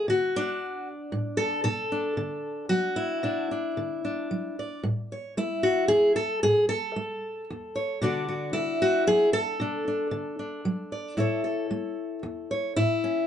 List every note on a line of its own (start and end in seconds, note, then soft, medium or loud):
0.08 0.55 D3 medium
0.08 0.88 F#4 medium
0.36 1.66 D4 loud
1.12 1.60 A2 medium
1.37 1.63 A4 loud
1.64 2.13 B2 medium
1.64 2.69 A4 loud
1.92 3.20 D4 soft
2.17 2.65 D3 medium
2.69 3.18 F#3 medium
2.69 3.49 F#4 loud
2.96 4.56 E4 medium
3.23 3.71 B2 medium
3.23 3.50 D4 medium
3.51 4.03 D4 soft
3.77 4.25 D3 medium
4.05 4.81 D4 soft
4.31 4.79 F#3 medium
4.59 4.82 D5 soft
4.83 5.32 A2 medium
5.12 5.37 C#5 soft
5.37 5.85 A3 medium
5.37 6.17 E4 medium
5.63 5.88 F#4 medium
5.88 6.38 E2 medium
5.88 6.15 G#4 loud
6.16 6.43 A4 loud
6.43 6.91 A2 medium
6.43 6.68 G#4 loud
6.69 8.01 A4 loud
6.96 7.44 A3 medium
7.50 7.97 E2 medium
7.76 7.99 C#5 medium
8.02 8.49 B2 medium
8.02 8.53 D3 medium
8.02 9.56 D4 medium
8.02 8.28 F#4 medium
8.02 8.53 D5 medium
8.28 8.81 F#4 medium
8.53 9.01 D3 medium
8.53 9.32 E4 loud
8.82 9.07 F#4 loud
9.07 9.54 F#3 medium
9.07 9.33 G#4 loud
9.33 11.17 A4 loud
9.60 10.07 B2 medium
9.60 9.86 D4 medium
9.88 10.38 D4 soft
10.11 10.60 D3 medium
10.39 11.16 D4 soft
10.65 11.13 F#3 medium
10.92 11.15 D5 soft
11.17 11.65 A2 medium
11.17 12.73 E4 medium
11.17 11.44 A4 medium
11.17 12.50 C#5 medium
11.44 13.27 A4 soft
11.71 12.19 A3 medium
12.23 12.71 E2 medium
12.51 12.76 C#5 medium
12.76 13.24 A2 medium
12.76 13.27 E4 loud
13.04 13.27 C#4 soft